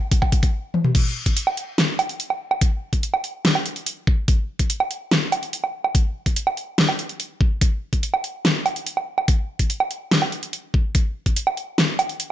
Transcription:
0.12 kick, closed hi-hat
0.22 kick, low woodblock
0.32 kick, closed hi-hat
0.43 kick, closed hi-hat
0.74 high tom
0.84 mid tom
0.95 kick, closed hi-hat, crash
1.26 kick, closed hi-hat
1.37 closed hi-hat
1.47 low woodblock
1.57 closed hi-hat
1.78 snare, closed hi-hat
1.99 closed hi-hat, low woodblock
2.09 closed hi-hat
2.20 closed hi-hat
2.30 low woodblock
2.51 low woodblock
2.61 kick, closed hi-hat
2.93 kick, closed hi-hat
3.03 closed hi-hat
3.14 low woodblock
3.24 closed hi-hat
3.45 snare, closed hi-hat
3.55 low woodblock
3.66 closed hi-hat
3.76 closed hi-hat
3.86 closed hi-hat
4.07 kick
4.28 kick, closed hi-hat
4.59 kick, closed hi-hat
4.70 closed hi-hat
4.80 low woodblock
4.91 closed hi-hat
5.11 snare, closed hi-hat
5.32 closed hi-hat, low woodblock
5.43 closed hi-hat
5.53 closed hi-hat
5.64 low woodblock
5.84 low woodblock
5.95 kick, closed hi-hat
6.26 kick, closed hi-hat
6.36 closed hi-hat
6.47 low woodblock
6.57 closed hi-hat
6.78 snare, closed hi-hat
6.89 low woodblock
6.99 closed hi-hat
7.09 closed hi-hat
7.20 closed hi-hat
7.41 kick
7.61 kick, closed hi-hat
7.93 kick, closed hi-hat
8.03 closed hi-hat
8.14 low woodblock
8.24 closed hi-hat
8.45 snare, closed hi-hat
8.66 closed hi-hat, low woodblock
8.76 closed hi-hat
8.87 closed hi-hat
8.97 low woodblock
9.18 low woodblock
9.28 kick, closed hi-hat
9.59 kick, closed hi-hat
9.70 closed hi-hat
9.80 low woodblock
9.91 closed hi-hat
10.11 snare, closed hi-hat
10.22 low woodblock
10.32 closed hi-hat
10.43 closed hi-hat
10.53 closed hi-hat
10.74 kick
10.95 kick, closed hi-hat
11.26 kick, closed hi-hat
11.36 closed hi-hat
11.47 low woodblock
11.57 closed hi-hat
11.78 snare, closed hi-hat
11.99 closed hi-hat, low woodblock
12.09 closed hi-hat
12.20 closed hi-hat

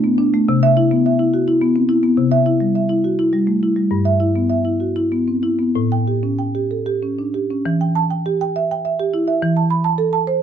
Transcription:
Already playing: B2 A3
0.04 B3
0.18 D4
0.34 A3
0.49 C3
0.63 E5
0.77 E4
0.91 B3
1.06 E5
1.19 E4
1.34 F#4
1.48 E4
1.61 B3
1.76 C4
1.89 E4
2.03 B3
2.17 C3
2.32 E5
2.46 E4
2.60 G3
2.75 E5
2.89 E4
3.04 F#4
3.19 E4
3.33 G3
3.47 A3
3.63 E4
3.76 G3
3.91 G2
4.05 E5
4.20 E4
4.36 B3
4.50 E5
4.65 E4
4.80 F#4
4.96 E4
5.12 B3
5.28 C4
5.43 E4
5.59 B3
5.75 A2
5.92 G5
6.08 G4
6.23 C#4
6.39 G5
6.55 G4
6.71 A4
6.86 G4
7.03 C#4
7.19 D4
7.34 G4
7.50 C#4
7.66 E3
7.81 G5
7.95 A5
8.10 G5
8.26 G4
8.41 G5
8.56 E5
8.71 G5
8.85 E5
9.00 G4
9.14 E4
9.28 E5
9.42 E3
9.57 A5
9.70 B5
9.84 A5
9.98 A4
10.13 A5
10.27 C5

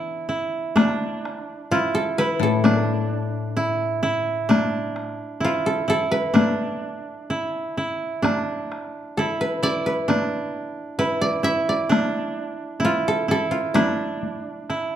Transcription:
Already playing: E3 B3 D4 E4
0.29 E4
0.76 D4, taiko rim, taiko high
1.25 taiko rim
1.71 E4 F4
1.95 A4
2.18 E4 B4
2.39 A2 A4
2.64 D4, taiko rim, taiko high
3.57 E4
4.03 E4
4.49 D4, taiko rim, taiko high
4.96 taiko rim
5.40 E4
5.45 F4
5.66 A4
5.88 E4 A4
6.11 B4
6.34 D4, taiko rim, taiko high
7.30 E4
7.77 E4
8.22 D4, taiko rim, taiko high
8.72 taiko rim
9.17 E4 A4
9.41 B4
9.63 E4 D5
9.86 B4
10.08 D4, taiko rim, taiko high
10.99 E4 B4
11.21 D5
11.43 E4 E5
11.69 D5
11.89 D4, taiko rim, taiko high
12.80 E4, taiko high
12.85 F4
13.08 A4
13.28 E4 A4
13.51 F4
13.74 D4 E4, taiko rim, taiko high
14.23 taiko high
14.70 E4, taiko rim

